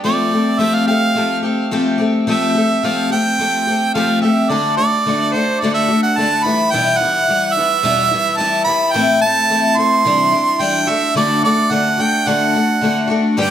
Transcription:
0.04 twelve-string acoustic guitar F3 A3 C4 G4, harmonica D5
0.32 twelve-string acoustic guitar A3 C4 G4
0.59 twelve-string acoustic guitar F3 A3 C4 G4, harmonica E5
0.74 harmonica F5
0.87 twelve-string acoustic guitar A3 C4 G4, harmonica F5
1.15 twelve-string acoustic guitar F3 A3 C4 G4
1.43 twelve-string acoustic guitar A3 C4 G4
1.71 twelve-string acoustic guitar F3 A3 C4 G4
1.98 twelve-string acoustic guitar A3 C4 G4
2.27 twelve-string acoustic guitar F3 A3 C4 G4, harmonica E5
2.55 twelve-string acoustic guitar A3 C4 G4
2.83 twelve-string acoustic guitar F3 A3 C4 G4, harmonica F5
3.10 twelve-string acoustic guitar A3 C4 G4, harmonica G5
3.39 twelve-string acoustic guitar F3 A3 C4 G4
3.67 twelve-string acoustic guitar A3 C4 G4
3.94 twelve-string acoustic guitar F3 A3 C4 G4, harmonica F5
4.21 twelve-string acoustic guitar A3 C4 G4, harmonica E5
4.49 twelve-string acoustic guitar D3 A3 D4 F#4, harmonica D5
4.77 twelve-string acoustic guitar A3 D4 F#4, harmonica D5
5.06 twelve-string acoustic guitar D3 A3 D4 F#4
5.33 twelve-string acoustic guitar A3 D4 F#4, harmonica C5
5.61 twelve-string acoustic guitar D3 A3 D4 F#4, harmonica D5
5.74 harmonica E5
5.88 twelve-string acoustic guitar A3 D4 F#4
6.03 harmonica F#5
6.17 twelve-string acoustic guitar D3 A3 D4 F#4, harmonica A5
6.43 twelve-string acoustic guitar B3 E4, harmonica B5
6.47 twelve-string acoustic guitar E3 G3
6.71 twelve-string acoustic guitar E2 B2 E3 G3 B3 E4, harmonica G5
6.97 twelve-string acoustic guitar E4, harmonica F#5
7.02 twelve-string acoustic guitar E3 G3 B3
7.28 twelve-string acoustic guitar E3 G3 B3 E4
7.53 harmonica E5
7.57 twelve-string acoustic guitar E3 G3 B3 E4
7.83 twelve-string acoustic guitar E2 B2 E3 G3 B3 E4
8.11 twelve-string acoustic guitar E3 G3 B3 E4
8.37 twelve-string acoustic guitar E3 G3 B3, harmonica A5
8.41 twelve-string acoustic guitar E4
8.64 twelve-string acoustic guitar B3 E4, harmonica B5
8.68 twelve-string acoustic guitar E3 G3
8.92 twelve-string acoustic guitar A2 E3 A3 C4, harmonica G5
8.96 twelve-string acoustic guitar E4
9.21 twelve-string acoustic guitar A3 C4 E4, harmonica A5
9.49 twelve-string acoustic guitar E3 A3 C4 E4
9.76 twelve-string acoustic guitar A3 C4 E4, harmonica C6
10.05 twelve-string acoustic guitar C3 E3 G3 D4 E4
10.32 twelve-string acoustic guitar G3 D4 E4
10.59 twelve-string acoustic guitar E3 G3 D4 E4, harmonica G5
10.87 twelve-string acoustic guitar A3 D4 F#4, harmonica E5
11.15 twelve-string acoustic guitar D3 A3 D4 F#4, harmonica D5
11.43 twelve-string acoustic guitar A3 D4 F#4, harmonica D5
11.70 twelve-string acoustic guitar D3 A3 D4 F#4, harmonica F#5
11.98 twelve-string acoustic guitar A3 D4 F#4, harmonica G5
12.26 twelve-string acoustic guitar D3 A3 D4 F#4, harmonica F#5
12.55 twelve-string acoustic guitar A3 D4 F#4
12.81 twelve-string acoustic guitar D3 A3 D4 F#4
13.08 twelve-string acoustic guitar A3 D4 F#4
13.37 twelve-string acoustic guitar G2 D3 G3 B3 D4 G4, harmonica G5

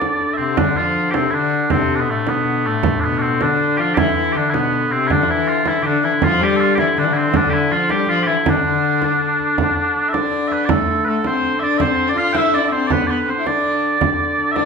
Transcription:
Already playing: hurdy-gurdy D3, bagpipes D5
0.01 frame drum
0.20 frame drum
0.34 bagpipes C4 E5
0.39 viola da gamba C3, frame drum
0.57 viola da gamba D3, hurdy-gurdy D3, bagpipes D4, frame drum
0.77 viola da gamba F3, bagpipes F4, frame drum
0.95 frame drum
1.11 bagpipes C4 G4, frame drum
1.16 viola da gamba C3
1.30 viola da gamba D3, bagpipes D4 E4
1.70 viola da gamba C3, bagpipes C4, frame drum
1.89 frame drum
1.95 viola da gamba B2, bagpipes D4
2.00 bagpipes B3
2.08 viola da gamba A2, bagpipes A3, frame drum
2.27 viola da gamba B2, bagpipes B3, frame drum
2.65 viola da gamba A2, bagpipes A3
2.83 frame drum
3.00 viola da gamba B2, bagpipes B3 D4, frame drum
3.18 bagpipes C4 D4, frame drum
3.41 viola da gamba D3, bagpipes D4, frame drum
3.77 viola da gamba F3, bagpipes F4 G4
3.94 bagpipes E4 G4, frame drum
3.98 viola da gamba E3
4.17 viola da gamba E3
4.32 viola da gamba D3, bagpipes G4, frame drum
4.37 bagpipes D4
4.49 viola da gamba B2, bagpipes B3 E4
4.54 frame drum
4.73 frame drum
4.91 viola da gamba C3, bagpipes C4
5.07 hurdy-gurdy D3, viola da gamba D3, bagpipes E4, frame drum
5.11 bagpipes D4
5.22 viola da gamba F3
5.28 viola da gamba E3, bagpipes E4, frame drum
5.48 bagpipes F4, frame drum
5.66 viola da gamba E3, bagpipes E4, frame drum
5.83 viola da gamba D3, bagpipes D4 G4
6.03 viola da gamba E3, bagpipes E4
6.22 viola da gamba F3, bagpipes F4, frame drum
6.41 viola da gamba G3, bagpipes G4, frame drum
6.56 bagpipes F4 A4, frame drum
6.75 bagpipes G4, frame drum
6.79 viola da gamba E3, bagpipes E4
6.97 viola da gamba D3, bagpipes D4
7.04 viola da gamba E3
7.10 viola da gamba D3, bagpipes E4
7.17 bagpipes C4
7.28 viola da gamba E3
7.34 viola da gamba D3, bagpipes D4, frame drum
7.50 bagpipes E4 G4, frame drum
7.71 viola da gamba F3, bagpipes F4, frame drum
7.90 viola da gamba G3, bagpipes G4, frame drum
8.09 viola da gamba F3, bagpipes F4
8.23 bagpipes G4
8.27 viola da gamba E3, bagpipes E4
8.46 viola da gamba D3, bagpipes D4, frame drum
8.52 viola da gamba E3
8.60 viola da gamba D3
9.02 frame drum
9.40 frame drum
9.58 hurdy-gurdy D3, frame drum
9.96 frame drum
10.09 bagpipes E5
10.13 viola da gamba D4, bagpipes D5, frame drum
10.48 bagpipes E5, frame drum
10.52 bagpipes B4
10.65 bagpipes D5, frame drum
10.70 viola da gamba A3, bagpipes A4
11.05 viola da gamba A3, bagpipes A4 B4, frame drum
11.24 viola da gamba C4, bagpipes C5, frame drum
11.43 frame drum
11.60 viola da gamba D4, bagpipes D5 E5, frame drum
11.78 viola da gamba C4, bagpipes C5 E5, frame drum
12.07 viola da gamba D4, bagpipes D5
12.16 viola da gamba F4, bagpipes F5, frame drum
12.33 viola da gamba E4, bagpipes E5 G5, frame drum
12.53 viola da gamba D4, bagpipes D5, frame drum
12.59 viola da gamba E4
12.65 viola da gamba D4, bagpipes E5
12.72 viola da gamba C4, bagpipes C5, frame drum
12.87 viola da gamba B3, bagpipes D5, frame drum
12.92 bagpipes B4
13.07 viola da gamba B3, bagpipes B4 D5, frame drum
13.26 viola da gamba C4, bagpipes C5, frame drum
13.38 viola da gamba E4
13.45 viola da gamba D4, bagpipes D5, frame drum
13.99 hurdy-gurdy D3, frame drum
14.38 frame drum
14.52 viola da gamba D4, bagpipes E5
14.56 bagpipes D5, frame drum

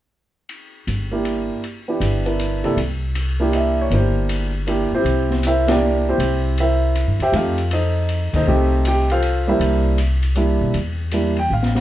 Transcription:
0.49 ride
0.87 upright bass G1, hi-hat pedal, ride
1.12 grand piano A#3 D4 E4 G4
1.25 ride
1.64 ride
1.88 grand piano B3 D4 E4 G4
2.00 upright bass G1, hi-hat pedal, ride
2.26 grand piano B3 D4 E4 A#4, ride
2.39 hi-hat pedal, ride
2.64 grand piano C3 A#3 D4 E4 A4, ride
2.76 upright bass C2, ride
3.15 hi-hat pedal, ride
3.40 grand piano A#3 D4 E4 G4
3.52 grand piano D#5 E5, ride
3.81 grand piano C#5
3.91 upright bass G1, grand piano A#3 D4 E4 G4 C5, ride
4.29 hi-hat pedal, ride
4.67 grand piano A#3 D4 E4 G4, ride
4.92 grand piano C4 E4 G4 C5, muted upright bass stroke
5.04 upright bass C2, ride
5.31 snare
5.43 grand piano E4 A#4 E5, hi-hat pedal, ride
5.47 grand piano C5
5.67 grand piano A#3 D4 E4 G4 D5, snare, ride
5.71 grand piano D4
6.09 grand piano C4 E4 G4 C5
6.18 upright bass C2, ride
6.58 grand piano E4 A#4 C5 E5, ride
6.95 hi-hat pedal, ride
7.07 upright bass G2
7.19 upright bass E2, grand piano G4 C5 E5 G5, ride
7.32 upright bass F2, grand piano A3 C4 D#4 G4 C5 F5, ride
7.36 grand piano F4 A4
7.58 ride
7.71 grand piano D#4 A4 C5 D#5, hi-hat pedal, ride
8.09 ride
8.33 upright bass D#2, grand piano D#4 A4 C5 D#5, kick, ride
8.47 upright bass C2, grand piano A3 C4 D#4 G4
8.85 grand piano G4 G5, hi-hat pedal, ride
9.10 grand piano F4 A4 C5 F5, ride
9.22 hi-hat pedal, ride
9.47 grand piano G3 A#3 D4 E4 A#4 C5 E5
9.59 upright bass C2, ride
9.98 hi-hat pedal, ride
10.23 ride
10.35 grand piano G3 A#3 D4 E4, ride
10.61 upright bass B2
10.74 upright bass E2, ride
11.11 grand piano G3 A#3 D4 E4, hi-hat pedal, ride
11.37 grand piano G5, ride
11.50 upright bass A1, grand piano F5
11.63 snare
11.75 snare

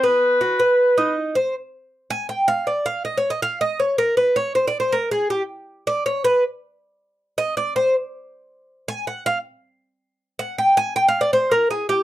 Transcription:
0.03 cuban tres B3, trumpet B4
0.41 cuban tres F#4
0.59 cuban tres B4
0.98 cuban tres D#4
1.35 cuban tres C5
2.10 cuban tres G#5
2.29 cuban tres G5
2.48 cuban tres F5
2.67 cuban tres D5
2.86 cuban tres F5
3.05 cuban tres D#5
3.17 cuban tres C#5
3.30 cuban tres D#5
3.42 cuban tres F5
3.61 cuban tres D#5
3.80 cuban tres C#5
3.98 cuban tres A#4
4.17 cuban tres B4
4.36 cuban tres C#5
4.55 cuban tres C5
4.68 cuban tres D5
4.80 cuban tres C5
4.92 cuban tres A#4
5.11 cuban tres G#4
5.30 cuban tres G4
5.87 cuban tres D5
6.06 cuban tres C#5
6.24 cuban tres B4
7.38 cuban tres D#5
7.57 cuban tres D5
7.76 cuban tres C5
8.88 cuban tres G#5
9.07 cuban tres F#5
9.26 cuban tres F5
10.39 cuban tres F#5
10.58 cuban tres G5
10.77 cuban tres G#5
10.96 cuban tres G5
11.08 cuban tres F5
11.21 cuban tres D5
11.33 cuban tres C5
11.52 cuban tres A#4
11.71 cuban tres G#4
11.89 cuban tres G4

